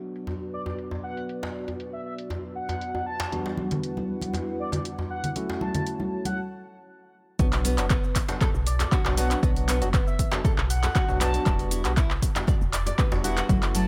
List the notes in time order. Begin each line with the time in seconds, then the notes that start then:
Already playing: F#3 B3 D4 F#4 B4 D5
0.16 closed hi-hat
0.27 closed hi-hat, djembe tone
0.54 D5
0.66 D5, closed hi-hat, djembe tone
0.79 closed hi-hat
0.91 djembe tone
1.03 F#5
1.17 closed hi-hat
1.29 closed hi-hat
1.43 djembe slap
1.68 closed hi-hat, djembe tone
1.80 closed hi-hat
1.93 E5
2.05 E5
2.18 closed hi-hat
2.30 closed hi-hat, djembe tone
2.55 F#5
2.69 closed hi-hat, djembe tone
2.81 closed hi-hat
2.95 djembe tone
3.06 A5
3.20 closed hi-hat, djembe slap
3.32 E2 G3 B3 D4 E4 F#4 B4 F#5, closed hi-hat, djembe tone, high conga
3.46 djembe slap
3.58 high conga
3.71 closed hi-hat, low conga
3.83 closed hi-hat
3.97 high conga
4.22 closed hi-hat, high conga
4.34 closed hi-hat, djembe tone
4.60 D5
4.72 D5, closed hi-hat, djembe tone, low conga
4.85 closed hi-hat
4.99 djembe tone
5.10 F#5
5.24 closed hi-hat, low conga
5.36 A3 C#4 E4 F#4 C#5 A5, closed hi-hat, high conga
5.50 djembe slap
5.61 A5, high conga
5.74 A5, closed hi-hat, djembe tone, low conga
5.87 closed hi-hat
6.00 high conga
6.25 F#5, closed hi-hat, high conga
7.39 B1 F#3 B3 D4 F#4, kick, closed hi-hat, djembe tone, shaker
7.53 clap, open hi-hat, shaker
7.65 B3, open hi-hat, shaker
7.78 F#1 F#3 B3 D4 F#4, clap, closed hi-hat, shaker
7.90 B3, kick, clap, closed hi-hat, shaker
8.04 shaker
8.16 B1, kick, clap, open hi-hat, shaker
8.29 F#3 B3 D4 F#4 A4, closed hi-hat, djembe slap, shaker
8.41 A4, kick, clap, closed hi-hat, djembe tone, shaker
8.54 B1, shaker
8.67 D5, open hi-hat, shaker
8.79 A4 D5, clap, closed hi-hat, djembe tone, shaker
8.92 F#3 B3 D4 F#4, kick, clap, closed hi-hat, shaker
9.05 B1 F#3 B3 D4 F#4, clap, djembe slap, djembe tone, shaker
9.17 F#3 B3 D4 F#4 F#5, open hi-hat, shaker
9.30 D4, clap, closed hi-hat, shaker
9.43 B1 F#3 B3 D4 F#4, kick, closed hi-hat, shaker
9.56 open hi-hat, shaker
9.68 B3, clap, open hi-hat, shaker
9.81 F#1 F#3 B3 D4 F#4, closed hi-hat, djembe tone, shaker
9.93 B3, kick, clap, closed hi-hat, shaker
10.07 E5, shaker
10.19 B1 E5, kick, open hi-hat, shaker
10.31 F#3 B3 D4 F#4 A4, clap, closed hi-hat, djembe slap, shaker
10.44 A4, kick, closed hi-hat, djembe tone, shaker
10.58 B1, clap, shaker
10.70 F#5, open hi-hat, shaker
10.83 A4, clap, closed hi-hat, djembe tone, shaker
10.95 F#3 B3 D4 F#4, kick, clap, closed hi-hat, djembe slap, shaker
11.08 B1 F#3 B3 D4 F#4, djembe tone, shaker
11.20 F#3 B3 D4 F#4 A5, clap, open hi-hat, djembe slap, shaker
11.34 D4, closed hi-hat, shaker
11.46 E1 G3 B3 D4 E4 F#4, kick, clap, closed hi-hat, djembe tone, shaker
11.59 open hi-hat, shaker
11.71 E4, open hi-hat, shaker
11.85 B1 G3 B3 D4 F#4, clap, closed hi-hat, shaker
11.97 E4, kick, clap, closed hi-hat, shaker
12.10 clap, shaker
12.22 E1, kick, open hi-hat, shaker
12.36 G3 B3 D4 F#4 D5, clap, closed hi-hat, djembe slap, shaker
12.47 D5, kick, closed hi-hat, djembe tone, shaker
12.61 E1, shaker
12.73 D5, clap, open hi-hat, shaker
12.86 D5, closed hi-hat, djembe tone, shaker
12.98 G3 B3 D4 F#4 B4, kick, clap, closed hi-hat, shaker
13.12 E1 G3 B3 D4 F#4, djembe slap, djembe tone, shaker
13.24 G3 B3 D4 E4 F#4 F#5, open hi-hat, shaker
13.37 F#4, clap, closed hi-hat, shaker
13.49 F#1 F#3 A3 C#4 E4 F#4, kick, closed hi-hat, shaker
13.62 clap, open hi-hat, shaker
13.75 F#3 A5, open hi-hat, shaker